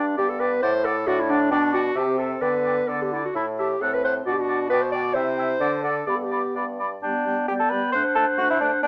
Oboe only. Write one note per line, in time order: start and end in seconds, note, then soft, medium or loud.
0.17 0.27 D5 soft
0.41 0.51 D5 soft
0.63 0.73 D5 medium
0.86 0.96 D5 medium
1.08 1.18 D5 medium
1.29 1.39 D5 medium
1.51 1.61 D5 medium
1.72 1.82 D5 soft
1.96 2.06 E5 soft
2.18 2.29 E5 soft
2.42 2.52 D5 soft
2.65 2.75 D5 soft
2.89 2.99 D5 soft
3.14 3.24 D5 soft
3.36 3.46 E5 soft
3.59 3.69 E5 soft
3.82 3.92 F#5 soft
4.04 4.14 F#5 soft
4.26 4.36 D5 soft
4.49 4.58 D5 soft
4.72 4.81 D5 medium
4.96 5.05 D5 soft
5.16 5.26 E5 medium
5.39 5.49 E5 medium
5.61 5.71 D5 medium
5.84 5.95 D5 soft
6.06 6.17 D5 soft
6.31 6.42 D5 soft
6.55 6.66 D5 soft
6.80 6.90 D5 soft
7.03 7.25 G5 soft
7.26 7.47 G5 soft
7.48 7.71 G5 soft
7.73 7.94 G5 soft
7.95 8.16 F#5 soft
8.17 8.39 F#5 soft
8.39 8.61 F#5 soft
8.62 8.83 F#5 soft
8.83 8.87 G5 medium